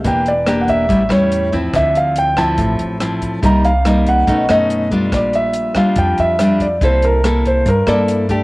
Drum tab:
HH |xxxxxxxx|xxxxxxxx|xxxxxxxx|xxxxxxxx|
SD |--r--r--|r--r--r-|--r--r--|r--r--r-|
BD |o--oo--o|o--oo--o|o--oo--o|o--oo--o|

HH |xxxxxxxx|
SD |--r--r--|
BD |o--oo--o|